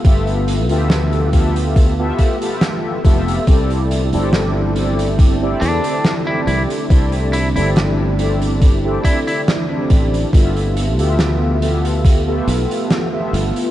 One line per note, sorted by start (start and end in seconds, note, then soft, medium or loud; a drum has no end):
0.00 10.29 A3 medium
0.00 3.44 B3 medium
0.00 0.64 B3 medium
0.00 3.44 F4 medium
0.04 0.70 G1 loud
0.04 0.64 F4 medium
0.04 0.65 G4 medium
0.04 0.65 A4 medium
0.04 0.65 E5 medium
0.04 kick loud
0.04 closed hi-hat medium
0.27 closed hi-hat soft
0.48 closed hi-hat medium
0.69 2.11 D2 medium
0.69 1.28 B3 medium
0.69 1.28 F4 medium
0.69 1.28 G4 medium
0.69 1.29 A4 medium
0.69 1.29 E5 loud
0.69 closed hi-hat medium
0.90 snare loud
0.90 closed hi-hat medium
1.13 closed hi-hat soft
1.32 1.93 B3 medium
1.32 1.93 F4 medium
1.32 1.93 G4 medium
1.32 1.94 A4 medium
1.32 1.94 E5 medium
1.32 kick medium
1.32 closed hi-hat medium
1.56 closed hi-hat medium
1.76 kick loud
1.76 closed hi-hat medium
1.98 2.37 B3 medium
1.98 2.37 F4 medium
1.98 2.37 G4 medium
1.98 2.37 A4 medium
1.98 2.37 E5 loud
2.19 kick medium
2.19 closed hi-hat medium
2.41 3.00 B3 medium
2.41 3.00 F4 medium
2.41 3.00 G4 medium
2.41 3.00 A4 medium
2.41 3.00 E5 medium
2.41 closed hi-hat medium
2.61 snare loud
2.61 closed hi-hat medium
3.04 3.38 F1 medium
3.04 3.42 B3 medium
3.04 3.43 F4 medium
3.04 3.43 G4 medium
3.04 3.43 A4 medium
3.04 3.43 E5 loud
3.04 kick loud
3.04 closed hi-hat medium
3.28 closed hi-hat medium
3.47 4.14 C2 medium
3.47 10.30 D3 medium
3.47 4.07 C4 medium
3.47 6.87 C4 medium
3.47 4.07 E4 medium
3.47 10.29 E4 medium
3.47 4.08 G4 medium
3.47 4.08 A4 medium
3.47 4.08 D5 medium
3.47 kick loud
3.47 closed hi-hat medium
3.70 closed hi-hat medium
3.91 closed hi-hat medium
4.12 5.54 G1 medium
4.12 4.71 C4 medium
4.12 4.71 E4 medium
4.12 4.71 G4 medium
4.12 4.72 A4 medium
4.12 4.72 D5 loud
4.12 closed hi-hat medium
4.33 snare loud
4.33 closed hi-hat medium
4.75 5.36 C4 medium
4.75 5.36 E4 medium
4.75 5.36 G4 medium
4.75 5.36 A4 medium
4.75 5.37 D5 medium
4.75 closed hi-hat medium
4.99 closed hi-hat medium
5.19 kick loud
5.19 closed hi-hat medium
5.41 6.22 C4 medium
5.41 6.22 E4 medium
5.41 6.22 G4 medium
5.41 6.22 A4 medium
5.41 6.22 D5 loud
5.61 5.79 E2 medium
5.61 6.13 D4 medium
5.61 closed hi-hat medium
5.84 closed hi-hat medium
6.04 snare loud
6.04 closed hi-hat medium
6.26 6.85 C4 medium
6.26 6.85 E4 medium
6.26 6.40 E4 medium
6.26 6.85 G4 medium
6.26 6.86 A4 medium
6.26 6.86 D5 medium
6.47 6.64 C2 medium
6.47 6.62 E4 medium
6.47 closed hi-hat medium
6.70 closed hi-hat medium
6.90 7.57 C2 medium
6.90 7.50 C4 medium
6.90 10.30 D4 medium
6.90 7.50 E4 medium
6.90 7.50 G4 medium
6.90 7.51 A4 medium
6.90 7.51 D5 medium
6.90 kick loud
6.90 closed hi-hat medium
7.12 closed hi-hat medium
7.33 7.48 E4 medium
7.33 closed hi-hat medium
7.55 8.97 G1 medium
7.55 8.14 C4 medium
7.55 8.14 E4 medium
7.55 7.69 E4 medium
7.55 8.14 G4 medium
7.55 8.14 A4 medium
7.55 8.14 D5 loud
7.55 closed hi-hat medium
7.76 snare loud
7.76 closed hi-hat medium
8.18 8.79 C4 medium
8.18 8.79 E4 medium
8.18 8.79 G4 medium
8.18 8.79 A4 medium
8.18 8.79 D5 medium
8.18 closed hi-hat medium
8.42 closed hi-hat medium
8.62 kick loud
8.62 closed hi-hat medium
8.83 9.64 C4 medium
8.83 9.65 E4 medium
8.83 9.65 G4 medium
8.83 9.65 A4 medium
8.83 9.65 D5 loud
9.05 9.19 E4 medium
9.05 kick medium
9.05 closed hi-hat medium
9.27 9.40 E4 medium
9.27 closed hi-hat medium
9.48 snare loud
9.48 closed hi-hat medium
9.69 10.28 C4 medium
9.69 10.28 E4 medium
9.69 10.28 G4 medium
9.69 10.29 A4 medium
9.69 10.29 D5 medium
9.90 10.23 A1 medium
9.90 kick loud
9.90 closed hi-hat medium
10.14 closed hi-hat medium
10.33 10.98 G1 loud
10.33 13.71 A3 medium
10.33 10.93 B3 medium
10.33 13.71 B3 medium
10.33 10.93 F4 medium
10.33 13.71 F4 medium
10.33 10.93 G4 medium
10.33 10.94 A4 medium
10.33 10.94 E5 medium
10.33 kick loud
10.33 closed hi-hat medium
10.56 closed hi-hat medium
10.77 closed hi-hat medium
10.98 12.39 D2 medium
10.98 11.56 B3 medium
10.98 11.57 F4 medium
10.98 11.57 G4 medium
10.98 11.57 A4 medium
10.98 11.57 E5 loud
10.98 closed hi-hat medium
11.19 snare loud
11.19 closed hi-hat medium
11.61 12.21 B3 medium
11.61 12.22 F4 medium
11.61 12.22 G4 medium
11.61 12.22 A4 medium
11.61 12.22 E5 medium
11.61 closed hi-hat medium
11.85 closed hi-hat medium
12.05 kick loud
12.05 closed hi-hat medium
12.26 13.07 B3 loud
12.26 13.07 F4 medium
12.26 13.07 G4 medium
12.26 13.08 A4 medium
12.26 13.08 E5 loud
12.47 12.65 B1 medium
12.47 closed hi-hat medium
12.71 closed hi-hat medium
12.90 snare loud
12.90 closed hi-hat medium
13.12 13.71 B3 medium
13.12 13.71 F4 medium
13.12 13.71 G4 medium
13.12 13.71 A4 medium
13.12 13.71 E5 medium
13.33 13.50 G1 medium
13.33 closed hi-hat medium
13.56 closed hi-hat medium